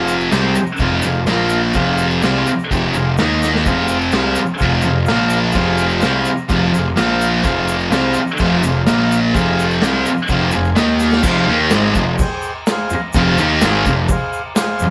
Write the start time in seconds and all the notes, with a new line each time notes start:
Already playing: F1 F2 C3 F3 G#4 C5 F5
0.08 shaker
0.21 shaker
0.31 C2 C3 G3 C4 G#4 C5 G5, snare, crash, shaker
0.55 muted distorted electric guitar stroke, muted picked electric bass stroke, shaker
0.66 shaker
0.77 F1 F2 C3, kick, crash, shaker
0.81 F3 G#4 C5 F5
1.02 F1 F2 C3 G#4, shaker
1.06 C5 F5
1.26 A#1 A#2 F3 A#3, snare, crash, shaker
1.31 F4 A#4 F5
1.49 shaker
1.73 F1 F2 C3 F3 G#4 C5 F5, kick, crash, shaker
1.98 shaker
2.10 shaker
2.21 C2 C3 G3 C4 G#4 C5 F5, snare, crash, shaker
2.46 muted picked electric bass stroke, muted distorted electric guitar stroke, shaker
2.59 shaker
2.71 F1 F2 C3 F3 G#4 C5 G5, kick, crash, shaker
2.94 F1 F2 C3 G#4 C5 F5, shaker
3.17 D#2 D#3 A#3 D#4 A#4 D#5, snare, crash, shaker
3.42 snare, shaker
3.55 snare
3.66 F1 F2 C3 G#4 C5 F5, kick, crash, shaker
3.70 F3
3.88 shaker
4.01 shaker
4.12 C2 C3 G3 G#4 C5, snare, crash, shaker
4.16 C4 F5
4.35 muted picked electric bass stroke, muted distorted electric guitar stroke, shaker
4.46 shaker
4.56 G#4 C5 F5, shaker
4.61 F1 F2 C3 F3, kick, crash
4.81 F1 F2 G#4 C5 F5, shaker
4.85 C3
5.04 F4 A#4 F5, snare, crash, shaker
5.08 A#1 A#2 F3 A#3
5.30 shaker
5.52 F1 F2 G#4 C5 F5, kick, crash, shaker
5.56 C3 F3
5.78 shaker
5.89 shaker
5.99 C2 C3 G#4 C5 F5, snare, crash, shaker
6.03 G3 C4
6.25 muted picked electric bass stroke, muted distorted electric guitar stroke, shaker
6.37 shaker
6.48 F1 F2 C3 F3 G#4 C5 F5, kick, crash, shaker
6.71 F1 F2 C3 G#4 C5 F5, shaker
6.95 A#2 F3 A#3 F4 A#4 F5, snare, crash, shaker
6.99 A#1
7.21 shaker
7.42 F1 F2 C3 F3 G#4 C5 F5, kick, crash, shaker
7.68 shaker
7.80 shaker
7.90 C2 C3 G3 C4 G#4 C5 F5, snare, crash, shaker
8.14 muted distorted electric guitar stroke, muted picked electric bass stroke, shaker
8.27 shaker
8.38 F1 F2 C3 F3 G#4 C5 F5, kick, crash, shaker
8.63 F1 F2 C3 G#4, shaker
8.67 C5 F5
8.86 A#1 A#2 F3 A#3 F4 A#4 F5, snare, crash, shaker
9.12 shaker
9.31 F2 C3 G#4 C5 F5, kick, crash
9.35 F1 F3, shaker
9.59 shaker
9.71 shaker
9.82 C2 C3 G3 C4 G#4 C5, snare, crash, shaker
9.86 F5
10.06 muted picked electric bass stroke, muted distorted electric guitar stroke, shaker
10.18 shaker
10.28 F1 F2 C3 F3 G#4 C5, kick, crash, shaker
10.32 F5
10.51 F1 F2 C3 G#4 C5 F5 G#5, shaker
10.65 shaker
10.76 D#2 D#3 A#3 D#4 A#4 D#5 G5, snare, crash, shaker
11.00 snare, shaker
11.05 F5
11.11 snare, shaker
11.23 F1 F2 C3 F3, kick, crash, shaker
11.27 G#4 C5 F5
11.48 D#2 D#3 A#3 D#4
11.70 G#1 G#2 D#3 G#3 G#4 C5, snare, crash, shaker
11.75 D#5
11.95 F1 F2 C3, kick, shaker
12.18 G#4 C5, kick, crash, shaker
12.22 G5
12.42 shaker
12.67 G#4, snare, crash, shaker
12.71 C5 F5
12.90 muted picked electric bass stroke, muted distorted electric guitar stroke, shaker
13.13 F1 F2 C3 G#4 C5 F5, kick, crash, shaker
13.17 F3
13.38 D#2 D#3 A#3 D#4, shaker
13.61 G#1 G#2 D#3 G#3 G#4 C5 F5, snare, crash, shaker
13.86 F1 F2 C3, kick, shaker
14.08 G#4 C5 F5, kick, crash, shaker
14.33 shaker
14.55 G#4 C5 F5, snare, crash, shaker
14.79 muted picked electric bass stroke, muted distorted electric guitar stroke, shaker